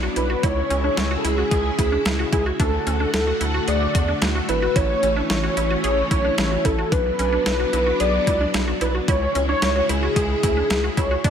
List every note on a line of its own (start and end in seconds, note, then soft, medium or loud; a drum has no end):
0.00 0.41 F#3 medium
0.00 0.41 B3 medium
0.00 0.41 D4 medium
0.00 0.15 F#4 medium
0.16 0.35 B1 medium
0.16 0.28 E4 medium
0.16 0.45 B4 medium
0.16 closed hi-hat medium
0.30 0.42 F#4 medium
0.43 0.62 C#2 loud
0.43 2.57 C#3 medium
0.43 2.57 G#3 medium
0.43 2.57 E4 medium
0.43 0.67 E4 medium
0.43 0.83 C#5 loud
0.43 kick loud
0.43 closed hi-hat medium
0.70 0.89 C#2 medium
0.70 0.82 C#4 medium
0.70 closed hi-hat medium
0.84 0.96 D4 medium
0.84 1.19 C#5 medium
0.97 1.16 C#2 loud
0.97 1.09 E4 medium
0.97 snare loud
0.97 closed hi-hat medium
1.11 1.23 F#4 medium
1.18 1.26 A4 medium
1.24 1.43 C#2 loud
1.24 1.36 E4 medium
1.24 2.32 G#4 loud
1.24 closed hi-hat medium
1.38 1.50 F#4 medium
1.51 1.70 C#2 loud
1.51 1.75 G#4 medium
1.51 kick medium
1.51 closed hi-hat medium
1.79 1.98 D2 loud
1.79 1.90 E4 medium
1.79 kick medium
1.79 closed hi-hat medium
1.92 2.04 D4 medium
2.05 2.25 C#2 loud
2.05 2.17 E4 medium
2.05 snare loud
2.05 closed hi-hat medium
2.19 2.31 F#4 medium
2.33 2.52 C#2 loud
2.33 2.44 E4 medium
2.33 2.45 G#4 medium
2.33 kick loud
2.33 closed hi-hat medium
2.46 2.58 F#4 medium
2.60 2.79 D2 loud
2.60 4.74 D3 medium
2.60 6.88 A3 medium
2.60 2.83 D4 loud
2.60 4.74 F#4 medium
2.60 3.10 A4 loud
2.60 kick loud
2.60 closed hi-hat medium
2.87 3.06 D2 loud
2.87 2.99 C#4 medium
2.87 closed hi-hat medium
3.00 3.12 D4 medium
3.14 3.33 D2 loud
3.14 3.26 E4 medium
3.14 3.69 A4 loud
3.14 snare loud
3.14 closed hi-hat medium
3.27 3.39 F#4 medium
3.41 3.60 D2 medium
3.41 3.53 E4 medium
3.41 closed hi-hat medium
3.54 3.66 F#4 medium
3.68 3.87 D2 loud
3.68 3.92 G#4 medium
3.68 4.22 D5 loud
3.68 closed hi-hat medium
3.95 4.14 E2 loud
3.95 4.07 F#4 medium
3.95 kick medium
3.95 closed hi-hat medium
4.08 4.20 D4 medium
4.22 4.41 D2 loud
4.22 4.34 E4 medium
4.22 snare loud
4.22 closed hi-hat medium
4.35 4.47 F#4 medium
4.49 4.68 G#1 medium
4.49 4.61 E4 medium
4.49 4.77 B4 medium
4.49 closed hi-hat medium
4.62 4.74 F#4 medium
4.76 4.95 A1 loud
4.76 6.90 E3 medium
4.76 6.90 C#4 medium
4.76 5.00 E4 medium
4.76 5.29 C#5 loud
4.76 kick loud
4.76 closed hi-hat medium
5.03 5.22 A1 medium
5.03 5.15 C#4 medium
5.03 closed hi-hat medium
5.16 5.28 D4 medium
5.30 5.49 A1 loud
5.30 5.42 E4 medium
5.30 5.55 C#5 loud
5.30 snare loud
5.30 closed hi-hat medium
5.43 5.55 F#4 medium
5.57 5.76 A1 loud
5.57 5.69 E4 medium
5.57 6.67 C#5 loud
5.57 closed hi-hat medium
5.71 5.82 F#4 medium
5.84 6.03 A1 loud
5.84 6.08 G#4 medium
5.84 closed hi-hat medium
6.11 6.30 B1 loud
6.11 6.23 E4 medium
6.11 kick medium
6.11 closed hi-hat medium
6.25 6.36 D4 medium
6.38 6.57 A1 loud
6.38 6.50 E4 medium
6.38 snare loud
6.38 closed hi-hat medium
6.51 6.63 F#4 medium
6.65 6.84 A1 loud
6.65 6.77 E4 medium
6.65 6.94 A4 medium
6.65 kick medium
6.65 closed hi-hat medium
6.78 6.90 F#4 medium
6.92 7.11 B1 loud
6.92 9.06 F#3 medium
6.92 9.06 B3 medium
6.92 9.06 D4 medium
6.92 7.16 D4 medium
6.92 7.46 B4 loud
6.92 kick loud
6.92 closed hi-hat medium
7.19 7.38 B1 loud
7.19 7.31 C#4 medium
7.19 closed hi-hat medium
7.33 7.44 D4 medium
7.46 7.65 B1 loud
7.46 7.58 E4 medium
7.46 8.02 B4 loud
7.46 snare loud
7.46 closed hi-hat medium
7.60 7.71 F#4 medium
7.73 7.92 B1 loud
7.73 7.85 E4 medium
7.73 closed hi-hat medium
7.87 7.98 F#4 medium
8.00 8.19 B1 loud
8.00 8.24 G#4 medium
8.00 8.54 D5 loud
8.00 closed hi-hat medium
8.27 8.46 C#2 loud
8.27 8.39 E4 medium
8.27 kick medium
8.27 closed hi-hat medium
8.41 8.53 D4 medium
8.54 8.73 B1 loud
8.54 8.66 E4 medium
8.54 snare loud
8.54 closed hi-hat medium
8.68 8.80 F#4 medium
8.81 9.00 B1 medium
8.81 8.93 E4 medium
8.81 8.93 B4 medium
8.81 closed hi-hat medium
8.95 9.07 F#4 medium
9.08 9.27 C#2 loud
9.08 11.22 C#3 medium
9.08 11.22 G#3 medium
9.08 9.32 E4 medium
9.08 11.22 E4 medium
9.08 9.46 C#5 loud
9.08 kick loud
9.08 closed hi-hat medium
9.35 9.54 C#2 medium
9.35 9.47 C#4 medium
9.35 closed hi-hat medium
9.49 9.61 D4 medium
9.49 9.91 C#5 medium
9.62 9.81 C#2 loud
9.62 9.74 E4 medium
9.62 snare loud
9.62 closed hi-hat medium
9.76 9.88 F#4 medium
9.89 10.08 C#2 loud
9.89 10.01 E4 medium
9.89 10.99 G#4 loud
9.89 closed hi-hat medium
10.03 10.15 F#4 medium
10.16 10.35 C#2 loud
10.16 10.40 G#4 medium
10.16 kick medium
10.16 closed hi-hat medium
10.43 10.62 D2 loud
10.43 10.55 E4 medium
10.43 kick medium
10.43 closed hi-hat medium
10.57 10.69 D4 medium
10.70 10.89 C#2 loud
10.70 10.82 E4 medium
10.70 snare loud
10.70 closed hi-hat medium
10.84 10.96 F#4 medium
10.97 11.16 C#2 loud
10.97 11.09 E4 medium
10.97 11.26 C#5 loud
10.97 kick medium
10.97 closed hi-hat medium
11.11 11.23 F#4 medium
11.24 11.30 D2 loud
11.24 11.30 D3 medium
11.24 11.30 A3 medium
11.24 11.30 D4 loud
11.24 11.30 F#4 medium
11.24 11.30 D5 loud
11.24 kick loud
11.24 closed hi-hat medium